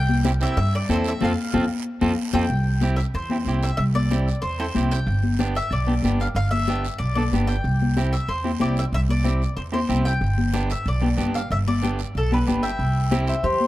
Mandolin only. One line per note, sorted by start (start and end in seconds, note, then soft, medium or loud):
0.00 0.23 G5 loud
0.43 0.56 E5 medium
0.57 0.74 E5 medium
0.75 0.89 D5 medium
0.93 1.08 C5 medium
1.08 1.22 E5 medium
1.24 1.68 F5 medium
2.34 2.96 G5 loud
2.96 3.01 E5 medium
3.15 3.64 C5 medium
3.63 3.76 E5 medium
3.77 3.82 E5 loud
3.95 4.40 D5 medium
4.42 4.58 C5 medium
4.60 4.93 C5 medium
4.92 5.52 G5 medium
5.56 5.73 E5 medium
5.72 6.22 D5 medium
6.21 6.26 F5 medium
6.36 6.51 F5 loud
6.51 6.97 E5 medium
6.98 7.14 D5 medium
7.15 7.49 D5 medium
7.47 8.12 G5 medium
8.13 8.30 E5 medium
8.29 8.59 C5 medium
8.61 8.76 D5 medium
8.79 8.84 E5 medium
8.94 8.99 E5 loud
9.10 9.56 D5 medium
9.57 9.62 C5 medium
9.74 10.04 C5 medium
10.05 10.66 G5 medium
10.71 10.86 E5 medium
10.88 11.37 D5 medium
11.35 11.51 F5 medium
11.52 11.57 E5 medium
11.68 12.12 D5 medium
12.17 12.33 A4 medium
12.34 12.63 B4 medium
12.63 13.24 E5 medium
13.27 13.43 C5 medium
13.44 13.67 G4 medium